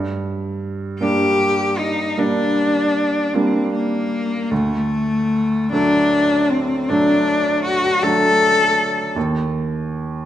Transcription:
Already playing: G2
1.01 G3 A#3 D4 G4
1.79 D#4
2.18 G3 A#3 D4
3.33 G3 A#3 C4 D4
3.73 A#3
4.51 D2 A3
5.72 F#3 A3 D4
6.50 C4
6.89 F#3 A3 D4
7.65 F#4
8.03 F#3 A3 D4 A4
9.16 D#2

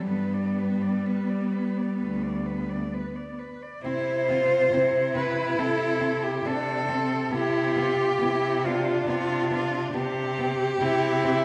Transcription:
0.07 G2 G3 B3 B4
0.33 D5
0.58 B4
0.82 D5
1.05 B4
1.29 D5
1.52 B4
1.77 D5
1.98 D2 B4
2.22 D5
2.46 B4
2.70 D5
2.93 B4
3.16 D5
3.39 B4
3.62 D5
3.84 C3 C4 E4 C5
4.29 C4 F4
4.71 C3 C4 E4
5.15 C4 B4
5.58 C3 C4 A4
6.00 C4
6.23 G4
6.45 C3 C4 D4 A4
6.88 C4
7.31 C3 B3 E4 G4
7.75 B3 F4
8.20 C3 B3 E4
8.65 B3 D4 F4
9.07 C3 B3 D4 F4
9.50 B3 F4
9.93 C3 B3 G4
10.38 B3
10.80 C3 C4 E4
11.24 C4

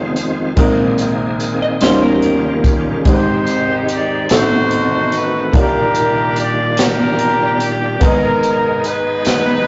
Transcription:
Already playing: F1 F2 D#3 G#3 C4 D#4 F4 C5
0.16 closed hi-hat, tambourine
0.56 A#1 A#2 D#3 G#3 A#3 C4 D#4 F4 G4 A#4, kick, closed hi-hat
0.63 G#4
0.98 closed hi-hat, tambourine
1.40 closed hi-hat, tambourine
1.62 D#5
1.81 D#2 D#3 G3 C#4 D#4 F4 A#4 C5, snare, closed hi-hat, tambourine
2.02 A#4
2.22 closed hi-hat
2.64 kick, closed hi-hat, tambourine
3.05 G#1 G#2 D#3 G#3 C4 D#4 G4 C5, kick, closed hi-hat
3.09 D#4 C5
3.47 closed hi-hat, tambourine
3.88 closed hi-hat, tambourine
3.94 D5
4.29 A1 A2 D#3 A3 C4 D#4 F#4 A4, snare, closed hi-hat, tambourine
4.33 D#4 C5
4.71 closed hi-hat
5.12 closed hi-hat, tambourine
5.16 B4
5.52 A#1 A#2 D#3 G3 A#3 D4 F4 G4 C#5, kick, closed hi-hat
5.57 D4 G4 A#4
5.63 D5
5.95 closed hi-hat, tambourine
6.36 D5, closed hi-hat, tambourine
6.77 D4 G4 A#4, snare, closed hi-hat, tambourine
7.19 closed hi-hat
7.60 closed hi-hat, tambourine
8.00 G#1 G#2 G#3 B3 D#4 G#4 A#4 A#5, kick, closed hi-hat
8.04 D#5
8.43 closed hi-hat, tambourine
8.84 D#4 B4, closed hi-hat, tambourine
9.25 snare, closed hi-hat, tambourine

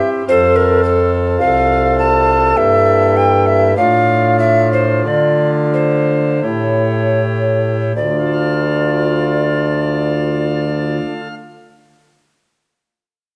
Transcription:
Already playing: C4 E4 G4
0.25 F2 C4 F4 A4 C5
0.30 F2 A4
0.56 A#4
0.84 A4
1.40 C2 A4 F5
1.99 A5
2.53 G2 A#3 E4 G4 E5
2.58 G2
3.17 G5
3.46 E5
3.74 A2 A3 D4 F4 F5
3.78 A2 F4
4.39 E5
4.73 C5
5.05 D3 D5
5.74 C5
6.40 A2 A3 E4 G4 C#5
6.45 A2 E4
7.96 D2 D3 F4 D5
8.05 A3
8.12 D4
8.19 F4
8.26 A4
8.33 F5

